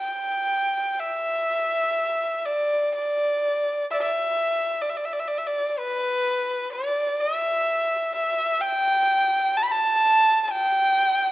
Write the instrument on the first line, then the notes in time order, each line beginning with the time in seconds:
erhu
0.00 G5
0.99 E5
2.45 D5
2.95 D5
3.91 D5 E5
4.01 E5
4.82 D5
4.89 E5
4.97 D5
5.05 E5
5.13 D5
5.19 E5
5.28 D5
5.38 E5
5.46 D5
5.69 D5
5.78 B4
6.72 D5
7.20 E5
8.15 E5
8.61 G5
9.57 A5
9.63 B5
9.71 A5
10.43 A5
10.52 G5